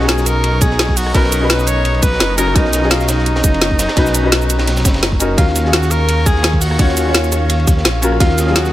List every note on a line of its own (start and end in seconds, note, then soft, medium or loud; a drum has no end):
0.00 1.13 B1 loud
0.00 1.13 C#4 medium
0.00 1.14 D#4 medium
0.00 1.15 F#4 medium
0.00 1.14 G#4 medium
0.00 2.39 A#4 loud
0.00 5.34 D#5 medium
0.00 5.34 A#5 medium
0.00 5.34 C#6 medium
0.00 snare soft
0.08 0.28 G#4 loud
0.08 snare loud
0.08 closed hi-hat medium
0.08 ride medium
0.18 snare medium
0.18 shaker soft
0.26 0.63 A#4 loud
0.26 closed hi-hat medium
0.26 ride medium
0.26 shaker medium
0.44 closed hi-hat medium
0.44 ride medium
0.61 0.99 G#4 loud
0.61 kick loud
0.61 closed hi-hat medium
0.61 ride medium
0.61 shaker medium
0.71 snare soft
0.79 snare loud
0.79 closed hi-hat medium
0.79 ride medium
0.89 kick medium
0.97 1.14 F#4 loud
0.97 closed hi-hat medium
0.97 open hi-hat medium
0.97 shaker medium
1.06 cross-stick soft
1.13 2.01 B1 loud
1.13 1.38 C#4 medium
1.13 1.39 D#4 medium
1.13 1.40 F#4 medium
1.13 1.52 A#4 loud
1.13 1.40 B4 loud
1.13 kick loud
1.13 closed hi-hat medium
1.13 ride medium
1.24 snare medium
1.32 closed hi-hat medium
1.32 ride medium
1.32 shaker medium
1.39 2.35 C#4 medium
1.39 2.36 D#4 medium
1.39 2.36 F#4 medium
1.44 2.37 B4 loud
1.50 1.69 B4 loud
1.50 snare loud
1.50 closed hi-hat medium
1.50 ride medium
1.59 shaker soft
1.67 1.96 C#5 loud
1.67 closed hi-hat medium
1.67 ride medium
1.67 shaker medium
1.85 closed hi-hat medium
1.85 ride medium
1.94 2.04 C#5 medium
1.94 ride soft
2.02 2.19 B1 loud
2.02 2.37 B4 loud
2.02 kick loud
2.02 closed hi-hat loud
2.02 ride medium
2.02 shaker medium
2.12 snare soft
2.20 2.54 F#1 loud
2.20 snare loud
2.20 closed hi-hat medium
2.20 ride medium
2.37 2.53 C#4 loud
2.37 2.54 D#4 loud
2.37 2.54 F#4 loud
2.37 2.57 A#4 loud
2.37 2.54 A#4 loud
2.37 closed hi-hat medium
2.37 ride medium
2.37 shaker medium
2.48 cross-stick soft
2.54 3.43 B1 loud
2.54 2.79 C#4 medium
2.54 2.80 D#4 medium
2.54 2.92 D#4 loud
2.54 2.81 F#4 medium
2.54 2.81 A#4 loud
2.54 kick loud
2.54 closed hi-hat medium
2.54 ride medium
2.65 snare soft
2.73 snare soft
2.73 closed hi-hat loud
2.73 ride medium
2.73 shaker medium
2.80 3.94 C#4 medium
2.80 3.94 D#4 medium
2.80 3.95 F#4 medium
2.80 snare soft
2.85 3.96 G#4 medium
2.90 3.10 F4 medium
2.90 snare loud
2.90 closed hi-hat medium
2.90 ride loud
3.00 snare medium
3.00 shaker soft
3.08 5.03 D#4 loud
3.08 snare loud
3.08 closed hi-hat loud
3.08 ride medium
3.08 shaker medium
3.18 snare medium
3.26 closed hi-hat medium
3.26 ride medium
3.36 snare loud
3.36 ride medium
3.43 3.87 F#1 medium
3.43 kick loud
3.43 snare soft
3.43 closed hi-hat loud
3.43 shaker medium
3.54 ride medium
3.61 snare loud
3.61 closed hi-hat medium
3.61 ride medium
3.71 kick medium
3.79 snare loud
3.79 closed hi-hat loud
3.79 ride medium
3.79 shaker medium
3.88 cross-stick soft
3.88 snare loud
3.88 ride medium
3.96 4.84 B1 loud
3.96 4.20 C#4 loud
3.96 4.22 D#4 medium
3.96 4.22 F#4 medium
3.96 4.22 B4 loud
3.96 kick loud
3.96 closed hi-hat medium
3.96 ride loud
4.06 snare medium
4.06 shaker soft
4.14 closed hi-hat loud
4.14 ride medium
4.14 shaker medium
4.22 5.17 C#4 medium
4.22 5.18 D#4 medium
4.22 5.19 F#4 medium
4.26 5.20 B4 loud
4.32 snare loud
4.32 closed hi-hat medium
4.32 ride medium
4.42 shaker soft
4.50 closed hi-hat loud
4.50 ride medium
4.50 shaker medium
4.59 snare loud
4.59 ride medium
4.67 snare loud
4.67 closed hi-hat medium
4.67 ride medium
4.77 snare loud
4.77 ride medium
4.77 shaker soft
4.85 5.37 F#1 loud
4.85 kick loud
4.85 snare loud
4.85 closed hi-hat loud
4.85 ride medium
4.85 shaker medium
4.94 snare loud
4.94 ride medium
5.03 snare loud
5.03 closed hi-hat medium
5.03 ride medium
5.12 kick medium
5.19 5.35 C#4 loud
5.19 5.36 D#4 medium
5.19 5.36 F#4 medium
5.19 5.37 A#4 loud
5.19 closed hi-hat loud
5.19 ride medium
5.19 shaker medium
5.37 6.78 D#2 loud
5.37 5.61 C#4 medium
5.37 5.63 F4 medium
5.37 5.75 F4 medium
5.37 5.63 F#4 medium
5.37 5.63 A#4 loud
5.37 8.73 F5 medium
5.37 8.18 C#6 medium
5.37 kick loud
5.37 closed hi-hat loud
5.37 ride medium
5.48 snare soft
5.55 snare soft
5.55 closed hi-hat medium
5.55 ride medium
5.55 shaker medium
5.63 6.76 C#4 medium
5.63 6.77 F4 medium
5.63 6.78 F#4 medium
5.63 snare soft
5.68 6.78 G#4 medium
5.73 5.92 F#4 loud
5.73 snare loud
5.73 closed hi-hat loud
5.73 ride medium
5.83 snare medium
5.83 shaker soft
5.91 6.28 A#4 loud
5.91 closed hi-hat medium
5.91 ride medium
5.91 shaker medium
6.09 closed hi-hat loud
6.09 ride loud
6.26 6.55 G#4 loud
6.26 kick loud
6.26 closed hi-hat medium
6.26 ride medium
6.26 shaker medium
6.36 snare soft
6.43 snare loud
6.43 closed hi-hat loud
6.43 ride medium
6.53 6.63 G#4 medium
6.53 kick medium
6.61 7.32 F#4 loud
6.61 closed hi-hat medium
6.61 open hi-hat medium
6.61 shaker medium
6.71 cross-stick medium
6.78 7.66 D#2 loud
6.78 7.02 C#4 loud
6.78 7.04 F4 medium
6.78 7.04 F#4 medium
6.78 7.05 C#5 loud
6.78 kick loud
6.78 closed hi-hat loud
6.78 ride medium
6.89 snare medium
6.97 closed hi-hat medium
6.97 ride medium
6.97 shaker medium
7.04 8.00 C#4 medium
7.04 8.00 F4 medium
7.04 8.01 F#4 medium
7.09 8.02 C#5 medium
7.14 snare loud
7.14 closed hi-hat loud
7.14 ride medium
7.24 shaker soft
7.32 cross-stick soft
7.32 closed hi-hat medium
7.32 ride medium
7.32 shaker medium
7.49 closed hi-hat loud
7.49 ride medium
7.60 ride soft
7.67 7.83 D#2 loud
7.67 kick loud
7.67 closed hi-hat medium
7.67 ride medium
7.67 shaker medium
7.78 snare soft
7.85 8.19 A#1 loud
7.85 snare loud
7.85 closed hi-hat loud
7.85 ride medium
8.01 8.18 C#4 loud
8.01 8.18 F4 loud
8.01 8.19 F#4 medium
8.01 8.19 A#4 loud
8.01 closed hi-hat medium
8.01 ride medium
8.01 shaker medium
8.12 cross-stick soft
8.19 8.73 D#2 loud
8.19 8.44 C#4 medium
8.19 8.45 F4 medium
8.19 8.57 F4 loud
8.19 8.45 F#4 medium
8.19 8.46 A#4 loud
8.19 8.73 D#6 medium
8.19 kick loud
8.19 closed hi-hat medium
8.19 ride medium
8.29 snare soft
8.38 snare soft
8.38 closed hi-hat medium
8.38 ride medium
8.38 shaker medium
8.45 8.73 F#3 medium
8.45 8.73 C#4 medium
8.45 8.73 F4 medium
8.45 snare soft
8.50 8.73 G#4 medium
8.56 8.73 F#4 medium
8.56 snare loud
8.56 closed hi-hat medium
8.56 ride medium
8.65 snare medium
8.65 shaker soft